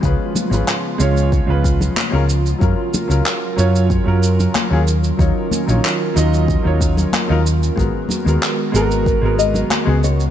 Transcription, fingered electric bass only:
X:1
M:4/4
L:1/16
Q:1/4=93
K:G#dor
V:1 name="Fingered electric bass" clef=bass
C,, z2 G,,, z2 C,,2 z C,,2 z2 C,,2 z | F,, z2 C,, z2 F,,2 z F,,2 z2 D,,2 z | D,, z2 A,,, z2 D,,2 z D,,2 z2 D,,2 z | G,,, z2 D,, z2 G,,,2 z G,,,2 z2 C,,2 z |]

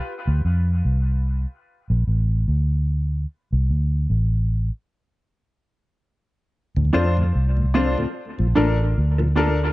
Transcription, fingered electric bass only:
X:1
M:4/4
L:1/16
Q:"Swing 16ths" 1/4=74
K:Dm
V:1 name="Fingered electric bass" clef=bass
z D,, F,,2 C,,3 z2 B,,, A,,,2 D,,4 | z C,, D,,2 A,,,3 z8 z | z D,, F,,2 C,,3 z2 B,,, A,,,2 D,,4 |]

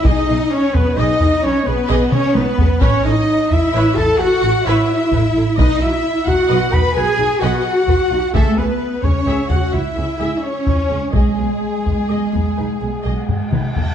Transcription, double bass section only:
X:1
M:12/8
L:1/8
Q:3/8=87
K:G#phr
V:1 name="Double bass section" clef=bass
B,,, B,,, z B,,, B,,, B,,, B,,, B,,, B,,, z B,,, B,,, | A,,, A,,, z A,,, A,,, A,,, A,,, A,,, A,,, z A,,, A,,, | B,,, B,,, z B,,, B,,, B,,, B,,, B,,, B,,, z B,,, B,,, | C,, C,, z C,, C,, C,, C,, C,, C,, z C,, C,, |
B,,, B,,, z B,,, B,,, B,,, B,,, B,,, B,,, z B,,, B,,, |]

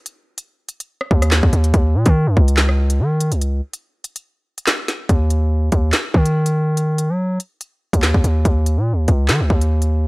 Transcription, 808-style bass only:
X:1
M:4/4
L:1/16
Q:1/4=143
K:Ebm
V:1 name="808-style bass" clef=bass
z8 z2 E,,3 E,, E,,2 | E,,2 B,, E,2 G,, D,,6 E,3 D,,- | D,,2 z12 z2 | E,,6 E,,2 z2 E,6- |
E,3 G,3 z4 z E,,2 E,, E,,2 | E,,3 B,,3/2 E,,3/2 D,,2 E, D,, E,,6 |]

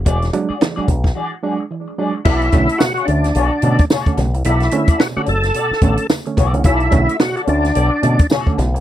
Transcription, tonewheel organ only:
X:1
M:4/4
L:1/16
Q:"Swing 16ths" 1/4=109
K:Bdor
V:1 name="Tonewheel organ"
z16 | E4 F F D6 z4 | E4 F F A6 z4 | E4 F F D6 z4 |]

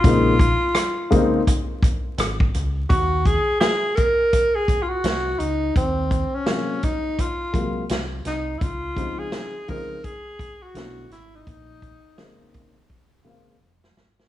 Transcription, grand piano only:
X:1
M:4/4
L:1/8
Q:"Swing 16ths" 1/4=84
K:Bbm
V:1 name="Grand piano"
[D,A,B,CE] z2 [D,A,B,CE] z4 | z8 | z2 [C,G,A,B,F] z2 [C,G,A,B,F] z2 | z [D,F,A,CE] z [D,F,A,CE] z2 [=D,=A,=B,^C=E] z |
z2 [D,A,B,CE] z2 [D,A,B,CF] z2 |]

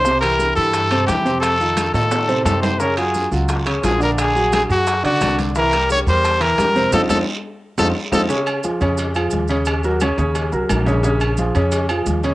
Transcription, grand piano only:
X:1
M:4/4
L:1/8
Q:1/4=175
K:Bbm
V:1 name="Grand piano"
[C,Cc] [=E,=E=G]2 [E,EG]2 [C,Cc] [E,EG] [C,Cc]- | [C,Cc] [E,EF]2 [E,EF]2 [C,Cc] [C,Cc]2 | [D,Dd] [G,FG]2 [G,FG]2 [D,Dd] [F,FG] [=D,=D=d]- | [=D,=D=d] [^F,^FA]2 [F,FA]2 [D,Dd] [D,Dd]2 |
[=E,=E=e] [=G,=GB]2 [G,GB]2 [E,Ee] [G,GB] [C,Cc] | [CEF] [CEF] z3 [CEF] z [CEF] | [D,Dd]2 [F,FA] [D,Dd]2 [F,FA]2 [D,Dd]- | [D,Dd] [G,GB] [D,Dd] [D,Dd]2 [G,GB]2 [D,Dd] |
[D,Dd]2 [F,FA] [D,Dd]2 [F,FA]2 [D,Dd] |]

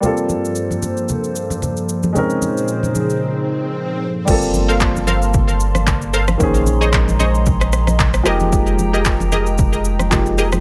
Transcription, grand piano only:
X:1
M:4/4
L:1/8
Q:"Swing 16ths" 1/4=113
K:Bblyd
V:1 name="Grand piano"
[G,B,CFA]8 | [_A,C_D_EB]6- [A,CDEB] z | [G,A,B,CFA]8 | [_E,B,_D_Ac]6- [E,B,DAc] [F,_A,B,_EG]- |
[F,_A,B,_EG]6 [F,A,B,EG]2 |]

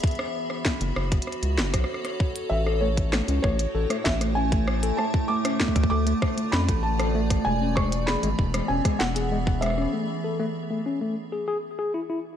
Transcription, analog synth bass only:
X:1
M:4/4
L:1/16
Q:1/4=97
K:A
V:1 name="Analog synth bass" clef=bass
z4 z F,,, F,,, z2 C,, F,,, B,,, z4 | A,,,4- A,,, C,, A,,, z A,,, z A,,,6 | z4 z D,, D,, z3 =F,, A,,,4- A,,, | E,,,4- E,,, G,,, E,,, z E,,, z E,,,6 |
z16 |]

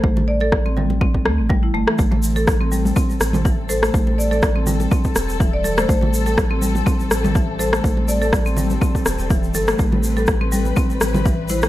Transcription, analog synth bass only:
X:1
M:4/4
L:1/16
Q:"Swing 16ths" 1/4=123
K:Am
V:1 name="Analog synth bass" clef=bass
A,,,8- A,,,2 D,, A,,,3 G,,, z | A,,,8 z2 A,,,6 | A,,,8 z2 E,,,6 | A,,,8 z2 A,,,6 |
A,,,8 z2 E,,, E,,,3 G,,,2 | A,,,8 z2 A,,,6 |]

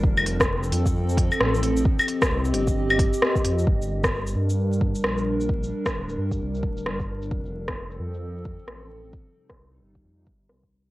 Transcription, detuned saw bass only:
X:1
M:4/4
L:1/8
Q:"Swing 16ths" 1/4=132
K:Gm
V:1 name="Detuned saw bass" clef=bass
F,,,3 F,,2 z A,,,2 | z2 C,, G,,,2 z2 F,, | G,,,3 G,,2 z B,,,2- | B,,, z D,,, G,, C,, D,,, G,,,2 |
F,,,3 F,,2 z A,,,2 | z2 C,, G,,, F,, G,,, C,,2 |]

